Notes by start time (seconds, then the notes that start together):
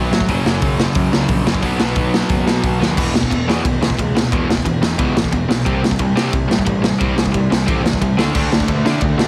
Already playing: B2 F#3 B3
0.11 A2, snare
0.20 kick
0.27 F#1 F#2 C#3 F#3, kick, open hi-hat
0.45 F#1, snare
0.62 F#1, kick, open hi-hat
0.80 snare
0.95 F#2, kick, open hi-hat
1.12 C#2, snare
1.28 A#1, kick, open hi-hat
1.45 F#1 F#2 C#3 F#3, snare
1.54 kick
1.61 B1 B2 F#3 B3, kick, open hi-hat
1.80 B1, snare
1.95 B1, kick, open hi-hat
2.14 snare
2.29 F#1, kick, open hi-hat
2.46 B2, snare
2.64 B1, kick, open hi-hat
2.79 D#2 B2 F#3 B3, snare
2.96 E1 E2 B2 E3, kick, crash
3.14 E2 B2, snare
3.23 kick
3.31 E1 E2 B2, kick, ride
3.47 E2 B2 E3, snare
3.64 E1 E2 B2, kick, ride
3.80 C#2 E2 B2, snare
3.90 kick
3.97 C#2 E2 B2, kick, ride
4.15 E2 B2, snare
4.31 E1 E2 B2 E3, kick, ride
4.48 E1 E2 B2, snare
4.57 kick
4.65 E1 E2 B2, kick, ride
4.82 E1 E2 B2, snare
4.98 C#2 E2 B2 E3, kick, ride
5.15 A1 E2 B2, snare
5.24 kick
5.32 E1 E2 B2, kick, ride
5.48 B1 E2 B2, snare
5.66 C2 C3 G3 C4, kick, ride
5.83 C3 G3, snare
5.91 kick
5.99 C2 C3 G3, kick, ride
6.16 C3 G3 C4, snare
6.32 C2 C3 G3, kick, ride
6.49 A2 C3 G3, snare
6.59 kick
6.66 A1 C3 G3, kick, ride
6.84 C3 G3, snare
7.01 C2 C3 G3 C4, kick, ride
7.18 C2 C3 G3, snare
7.26 kick
7.34 C2 C3 G3, kick, ride
7.50 C2 C3 G3, snare
7.68 A1 C3 G3 C4, kick, ride
7.84 E2 C3 G3, snare
7.93 kick
8.01 C2 C3 G3, kick, ride
8.17 D2 D3 A3 D4, snare
8.35 D2 D3 A3 D4, kick, crash
8.52 D3 A3, snare
8.60 kick
8.68 D2 D3 A3, kick, ride
8.84 D3 A3 D4, snare
9.01 D2 D3 A3, kick, ride
9.18 B2 D3 A3 D4, snare